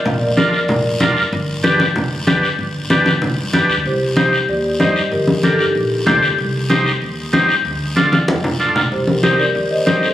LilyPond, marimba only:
\new Staff \with { instrumentName = "Marimba" } { \time 4/4 \key c \dorian \tempo 4 = 190 <d'' f''>8 <bes' d''>8 <bes' d''>8 <bes' d''>8 <bes' d''>4. r8 | r1 | r1 | <g' c''>4 <g' c''>4 <g' d''>4 <c'' ees''>4 |
<g' bes'>4 <d' a'>8 <ees' g'>2 r8 | r1 | r1 | <g' c''>8 <g' bes'>8 <g' c''>8 <bes' d''>4 <c'' ees''>8 <c'' ees''>8 <a' c''>8 | }